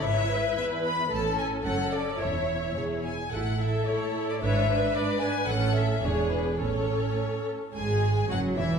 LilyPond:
<<
  \new Staff \with { instrumentName = "Violin section" } { \time 2/4 \key a \major \tempo 4 = 110 e''4 e''8 b''8 | a''8 gis''8 fis''8 d''8 | e''4 cis''8 gis''8 | fis''8 e''8 cis''8. d''16 |
e''4 d''8 gis''8 | fis''8 e''8 cis''8 b'8 | cis''4. r8 | \key e \major gis''4 fis''8 e''8 | }
  \new Staff \with { instrumentName = "Violin section" } { \time 2/4 \key a \major cis''8 b'4. | a'4 a'4 | cis''4. r8 | a'2 |
cis''8 b'4. | a'4 gis'4 | a'4. r8 | \key e \major gis'4 fis'8 e'8 | }
  \new Staff \with { instrumentName = "Viola section" } { \time 2/4 \key a \major << { b'8 b'4. | a'4 a'4 | cis''4 gis'8 r8 | a'8 a'8 a'8 a'8 |
b'8 b'8 b'8 b'8 | a'4 gis'4 | a'4. r8 | \key e \major gis4 fis8 e8 | } \\ { e'2 | cis'4 cis'4 | e'4 e'8 r8 | e'8 e'8 e'8 e'8 |
d'8 d'8 d'8 d'8 | cis'4 d'4 | cis'4. r8 | r2 | } >> }
  \new Staff \with { instrumentName = "Cello section" } { \clef bass \time 2/4 \key a \major gis,4 e,4 | a,4 fis,4 | e,4 e,4 | a,4 a,4 |
gis,4 gis,4 | a,4 e,4 | a,4. r8 | \key e \major gis,4 fis,8 e,8 | }
  \new Staff \with { instrumentName = "Double bass section" } { \clef bass \time 2/4 \key a \major gis,,4 r4 | a,,4 fis,,4 | e,,4 e,,4 | a,,4 r4 |
gis,,4 r4 | a,,4 e,,4 | a,,4 r4 | \key e \major gis,,4 fis,,8 e,,8 | }
>>